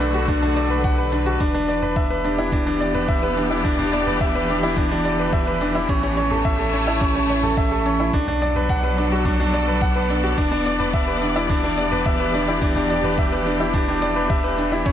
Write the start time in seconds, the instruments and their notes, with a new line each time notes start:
Already playing: sub bass B1, string section D3 A3 F#4, grand piano B4 D5 F#5
0.00 grand piano D4, shaker
0.11 grand piano F#4, string section B4
0.28 grand piano D4, kick, mid tom
0.42 grand piano D4
0.56 grand piano D5, shaker
0.70 grand piano B4
0.84 grand piano F#5, kick
0.98 grand piano B4
1.12 grand piano D4, shaker
1.26 grand piano F#4
1.40 sub bass E1, string section E3, grand piano D4, kick
1.54 grand piano D4
1.68 grand piano D5, shaker
1.82 grand piano B4, mid tom
1.94 string section B3, grand piano E5, kick
2.10 grand piano B4
2.24 grand piano D4, string section G4, shaker
2.38 grand piano E4
2.52 grand piano D4, kick
2.66 grand piano D4
2.81 grand piano D5, shaker
2.91 grand piano B4, string section D5, mid tom
3.08 grand piano E5, kick
3.23 grand piano B4
3.37 grand piano D4, shaker
3.51 grand piano E4
3.65 grand piano D4, kick
3.79 grand piano D4, mid tom
3.93 grand piano D5, shaker
4.07 grand piano B4, mid tom
4.21 grand piano E5, kick
4.35 grand piano B4
4.49 grand piano D4, shaker
4.63 grand piano E4
4.77 grand piano D4, kick
4.91 grand piano D4
5.05 grand piano D5, shaker
5.19 grand piano B4
5.33 grand piano E5, kick
5.47 grand piano B4
5.61 grand piano D4, shaker
5.75 grand piano E4
5.89 sub bass A1, grand piano C#4, kick
5.95 string section A3
6.03 grand piano C#4
6.17 grand piano C#5, string section C#5, shaker
6.31 grand piano A4, mid tom
6.45 grand piano E5, kick
6.59 grand piano A4
6.73 grand piano C#4, shaker
6.87 grand piano E4
7.01 grand piano C#4, kick
7.15 grand piano C#4
7.29 grand piano C#5, shaker
7.43 grand piano A4, mid tom
7.57 grand piano E5, kick
7.72 grand piano A4
7.85 grand piano C#4, shaker
8.00 grand piano E4
8.13 sub bass B1, string section F#3, grand piano D4, kick
8.27 grand piano D4, mid tom
8.39 string section A4, grand piano D5, shaker
8.52 string section B3, grand piano B4, mid tom
8.69 grand piano F#5, kick
8.77 string section D5
8.84 grand piano B4
8.97 grand piano D4, shaker
9.12 grand piano F#4
9.25 grand piano D4, kick, mid tom
9.40 grand piano D4
9.53 grand piano D5, shaker
9.68 grand piano B4
9.81 grand piano F#5, kick
9.96 grand piano B4
10.10 grand piano D4, shaker
10.23 grand piano F#4
10.37 sub bass E1, string section E3, grand piano D4, kick
10.52 grand piano D4
10.66 grand piano D5, shaker
10.80 grand piano B4, mid tom
10.94 grand piano E5, kick
11.05 string section G4, grand piano B4
11.22 grand piano D4, shaker
11.36 grand piano E4
11.50 grand piano D4, kick
11.64 grand piano D4
11.78 grand piano D5, shaker
11.92 grand piano B4, mid tom
12.06 grand piano E5, kick
12.20 grand piano B4
12.34 grand piano D4, shaker
12.48 grand piano E4
12.62 grand piano D4, kick
12.76 grand piano D4, mid tom
12.90 grand piano D5, shaker
13.04 grand piano B4, mid tom
13.18 grand piano E5, kick
13.32 grand piano B4
13.46 grand piano D4, shaker
13.60 grand piano E4
13.74 grand piano D4, kick
13.88 grand piano D4
14.02 grand piano D5, shaker
14.16 grand piano B4
14.30 grand piano E5, kick
14.44 grand piano B4
14.58 grand piano D4, shaker
14.72 grand piano E4
14.86 sub bass A1, grand piano C#4, kick